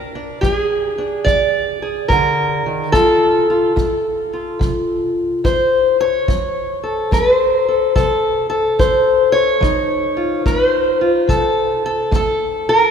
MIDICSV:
0, 0, Header, 1, 3, 480
1, 0, Start_track
1, 0, Tempo, 835655
1, 1688, Time_signature, 4, 2, 24, 8
1, 7415, End_track
2, 0, Start_track
2, 0, Title_t, "Steel-string acoustic guitar"
2, 0, Program_c, 0, 25
2, 0, Note_on_c, 0, 46, 75
2, 0, Note_on_c, 0, 62, 45
2, 0, Note_on_c, 0, 70, 96
2, 81, Note_off_c, 0, 62, 0
2, 87, Note_on_c, 0, 62, 39
2, 217, Note_off_c, 0, 46, 0
2, 234, Note_off_c, 0, 70, 0
2, 236, Note_on_c, 0, 67, 81
2, 249, Note_on_c, 0, 53, 62
2, 299, Note_off_c, 0, 67, 0
2, 299, Note_on_c, 0, 68, 81
2, 558, Note_off_c, 0, 62, 0
2, 564, Note_on_c, 0, 62, 44
2, 696, Note_off_c, 0, 53, 0
2, 715, Note_on_c, 0, 74, 90
2, 731, Note_on_c, 0, 53, 60
2, 1037, Note_off_c, 0, 68, 0
2, 1047, Note_on_c, 0, 68, 44
2, 1177, Note_off_c, 0, 53, 0
2, 1195, Note_off_c, 0, 74, 0
2, 1197, Note_on_c, 0, 70, 85
2, 1215, Note_on_c, 0, 50, 55
2, 1526, Note_off_c, 0, 50, 0
2, 1529, Note_on_c, 0, 51, 58
2, 1669, Note_off_c, 0, 62, 0
2, 1671, Note_off_c, 0, 68, 0
2, 1679, Note_on_c, 0, 69, 101
2, 1683, Note_off_c, 0, 70, 0
2, 1684, Note_on_c, 0, 53, 67
2, 1686, Note_on_c, 0, 65, 43
2, 1691, Note_off_c, 0, 51, 0
2, 2008, Note_off_c, 0, 65, 0
2, 2011, Note_on_c, 0, 65, 42
2, 2133, Note_off_c, 0, 53, 0
2, 2158, Note_off_c, 0, 65, 0
2, 2160, Note_on_c, 0, 65, 60
2, 2480, Note_off_c, 0, 65, 0
2, 2489, Note_on_c, 0, 65, 38
2, 2638, Note_on_c, 0, 48, 62
2, 3091, Note_off_c, 0, 48, 0
2, 3123, Note_off_c, 0, 65, 0
2, 3125, Note_on_c, 0, 65, 56
2, 3129, Note_on_c, 0, 72, 91
2, 3444, Note_off_c, 0, 72, 0
2, 3450, Note_on_c, 0, 73, 88
2, 3575, Note_off_c, 0, 65, 0
2, 3605, Note_off_c, 0, 69, 0
2, 3607, Note_on_c, 0, 53, 71
2, 3926, Note_on_c, 0, 69, 46
2, 4055, Note_off_c, 0, 53, 0
2, 4085, Note_on_c, 0, 65, 60
2, 4092, Note_off_c, 0, 73, 0
2, 4095, Note_on_c, 0, 71, 75
2, 4210, Note_off_c, 0, 71, 0
2, 4210, Note_on_c, 0, 72, 75
2, 4412, Note_off_c, 0, 69, 0
2, 4414, Note_on_c, 0, 69, 41
2, 4535, Note_off_c, 0, 65, 0
2, 4567, Note_off_c, 0, 69, 0
2, 4569, Note_on_c, 0, 69, 82
2, 4572, Note_on_c, 0, 48, 64
2, 4873, Note_off_c, 0, 69, 0
2, 4880, Note_on_c, 0, 69, 78
2, 5018, Note_off_c, 0, 48, 0
2, 5044, Note_off_c, 0, 72, 0
2, 5048, Note_on_c, 0, 65, 55
2, 5052, Note_on_c, 0, 72, 82
2, 5353, Note_off_c, 0, 72, 0
2, 5355, Note_on_c, 0, 73, 93
2, 5496, Note_off_c, 0, 65, 0
2, 5517, Note_on_c, 0, 53, 65
2, 5521, Note_on_c, 0, 63, 49
2, 5527, Note_off_c, 0, 69, 0
2, 5840, Note_on_c, 0, 65, 41
2, 5971, Note_off_c, 0, 53, 0
2, 6004, Note_off_c, 0, 73, 0
2, 6007, Note_on_c, 0, 57, 59
2, 6010, Note_on_c, 0, 71, 84
2, 6125, Note_off_c, 0, 71, 0
2, 6125, Note_on_c, 0, 72, 84
2, 6318, Note_off_c, 0, 65, 0
2, 6325, Note_on_c, 0, 65, 44
2, 6455, Note_off_c, 0, 57, 0
2, 6476, Note_on_c, 0, 48, 61
2, 6484, Note_off_c, 0, 65, 0
2, 6487, Note_on_c, 0, 69, 88
2, 6802, Note_off_c, 0, 69, 0
2, 6811, Note_on_c, 0, 69, 78
2, 6929, Note_off_c, 0, 48, 0
2, 6958, Note_on_c, 0, 57, 60
2, 6967, Note_off_c, 0, 72, 0
2, 6972, Note_off_c, 0, 69, 0
2, 6982, Note_on_c, 0, 69, 84
2, 7289, Note_on_c, 0, 70, 94
2, 7409, Note_off_c, 0, 57, 0
2, 7415, Note_off_c, 0, 63, 0
2, 7415, Note_off_c, 0, 69, 0
2, 7415, Note_off_c, 0, 70, 0
2, 7415, End_track
3, 0, Start_track
3, 0, Title_t, "Drums"
3, 247, Note_on_c, 9, 36, 58
3, 304, Note_off_c, 9, 36, 0
3, 727, Note_on_c, 9, 36, 60
3, 784, Note_off_c, 9, 36, 0
3, 1206, Note_on_c, 9, 36, 61
3, 1263, Note_off_c, 9, 36, 0
3, 1685, Note_on_c, 9, 36, 60
3, 1743, Note_off_c, 9, 36, 0
3, 2166, Note_on_c, 9, 36, 56
3, 2223, Note_off_c, 9, 36, 0
3, 2647, Note_on_c, 9, 36, 59
3, 2705, Note_off_c, 9, 36, 0
3, 3129, Note_on_c, 9, 36, 59
3, 3186, Note_off_c, 9, 36, 0
3, 3609, Note_on_c, 9, 36, 60
3, 3666, Note_off_c, 9, 36, 0
3, 4091, Note_on_c, 9, 36, 63
3, 4149, Note_off_c, 9, 36, 0
3, 4571, Note_on_c, 9, 36, 60
3, 4629, Note_off_c, 9, 36, 0
3, 5051, Note_on_c, 9, 36, 67
3, 5109, Note_off_c, 9, 36, 0
3, 5530, Note_on_c, 9, 36, 60
3, 5587, Note_off_c, 9, 36, 0
3, 6007, Note_on_c, 9, 36, 59
3, 6064, Note_off_c, 9, 36, 0
3, 6484, Note_on_c, 9, 36, 58
3, 6542, Note_off_c, 9, 36, 0
3, 6963, Note_on_c, 9, 36, 67
3, 7021, Note_off_c, 9, 36, 0
3, 7415, End_track
0, 0, End_of_file